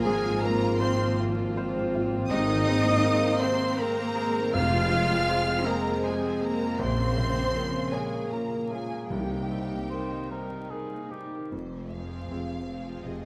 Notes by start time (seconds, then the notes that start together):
Already playing: F3 A#3 C4 F4 C5
0.03 G#1 G#2 G#3 C4 G#4 G#5
0.30 G#3
0.41 A#3 C4 A#4 A#5
0.54 C4
0.79 C4 F4 C5 C6
1.20 F4
1.31 F4
1.56 C5
1.81 F4
1.95 F4
2.29 G#1 G#2 C3 A#3 C4 D#4 D#5 D#6
2.49 D#3
2.54 D#3
2.67 G#3 C4
2.80 A#3
2.86 A#3
3.04 G#3 G#4 A#4
3.25 D#3
3.29 C5
3.40 C3 C4 C5 C6
3.61 D#3
3.77 A#3 A#4 A#5
3.81 G#3
3.99 A#3
4.03 G#4
4.15 G#3 G#4
4.28 A#3
4.38 D#3
4.53 F1 F2 C3 G#3 C4 F4 F5 F6
4.74 C3 F3
4.91 G#3 C4
5.12 F3
5.28 C3 G#4 C5
5.49 F3
5.53 C6
5.65 G#3 A#3 G#4 A#4 A#5
5.78 G#4
5.86 F3
6.03 C3 G#3 G#4 C5 G#5
6.26 F3 G#4
6.41 G#3 A#3 G#4 A#4 A#5
6.64 F3
6.79 A#1 A#2 C3 C#3 A#3 C4 C5 C6
7.00 C#3
7.04 F3
7.17 C#3 F3
7.29 C#3
7.37 A#3
7.54 F3 F4 A#4
7.74 C#3
7.92 C3 G#3 G#4 C#5 G#5
8.05 C#5
8.14 C#3
8.31 F3 A#3 A#4 A#5
8.54 A#3 F4
8.69 F3 G#3 F4 G#4 G#5
8.85 C#4
8.92 C#3
9.08 C2 C3 G3 D#4 G4 G5
9.12 D#4 G5
9.32 D#3
9.38 A#3
9.50 G3 C4
9.72 A#3
9.90 G3 D#4 A#4 C5
10.11 D#3
10.18 A#4
10.30 C3 A#4 C5
10.52 D#3
10.70 G3 G#4 A#4
10.93 A#3
10.99 D#4
11.09 G3 D#4 G4
11.25 A#3
11.34 D#3
11.50 F1 F2 C5
11.79 G#3
11.90 F3 C4 F4 G#4 F5
12.05 G#4
12.29 F1 F2 C4 F4 G#4
12.56 F5
12.68 F3 C4 F4 G#4
13.04 F1 F2 C3 F4 G#4 D#5